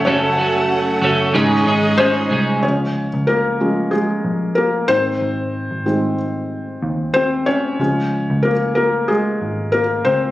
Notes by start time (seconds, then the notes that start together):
Already playing: F#3 A3 C#4 A4 C#5 F#5
0.05 F#1 F#2 C#3 F#3 A3 C#4 A4 C#5
0.37 F#3 A3 C#4 A4
1.01 F#1 F#3 A3 C#4 A4
1.33 G#1 G#2 C#3 D#3 G#3 C#4 D#4 G#4 D#5
1.65 G#1 G#3 C#4 D#4 G#4
1.97 G#3 C#4 D#4 G#4 C5
2.29 C2 G#3 C#4 D#4 G#4
2.63 C#2 F3 G#3 C#4 C#5
3.14 C#2
3.27 A#3 A#4
3.60 F3 G#3 C#4
3.91 G#3 G#4
4.25 A#1
4.55 A#3 A#4
4.88 G#1 D#3 G#3 C4 C5
5.21 G#1
5.71 G#1
5.86 D#3 G#3 C4
6.83 D#2
7.14 C4 C5
7.46 C#4 C#5
7.79 C#2 F3 G#3 C#4
8.30 C#2
8.43 A#3 A#4
8.75 A#3 A#4
9.08 G#3 G#4
9.41 G#1
9.72 A#3 A#4
10.05 C#2 C4 C5